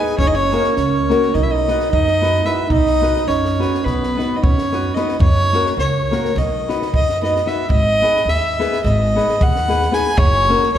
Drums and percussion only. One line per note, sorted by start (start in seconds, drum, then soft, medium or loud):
0.19 kick medium
0.51 snare soft
0.64 snare soft
0.77 snare soft
1.10 snare soft
1.23 snare soft
1.34 kick soft
1.34 snare soft
1.68 snare soft
1.80 snare soft
1.93 kick medium
2.07 snare soft
2.23 snare soft
2.35 snare soft
2.46 snare soft
2.70 kick medium
2.87 snare soft
3.03 snare soft
3.17 snare soft
3.29 snare soft
3.45 snare soft
3.62 snare soft
3.74 snare soft
3.86 kick soft
3.86 snare soft
4.03 snare soft
4.19 snare soft
4.44 kick medium
4.58 snare soft
4.72 snare soft
4.96 snare soft
5.08 snare soft
5.20 kick loud
5.53 snare soft
5.66 snare soft
5.79 snare soft
6.12 snare soft
6.25 snare soft
6.36 kick medium
6.36 snare soft
6.69 snare soft
6.82 snare soft
6.94 kick medium
7.09 snare soft
7.24 snare soft
7.36 snare soft
7.47 snare soft
7.70 kick medium
8.04 snare soft
8.16 snare soft
8.28 snare soft
8.60 snare soft
8.72 snare soft
8.84 kick medium
8.84 snare soft
9.17 snare soft
9.29 snare soft
9.41 kick medium
9.55 snare soft
9.69 snare soft
9.82 snare soft
9.94 snare soft
10.18 kick loud
10.51 snare soft
10.63 snare soft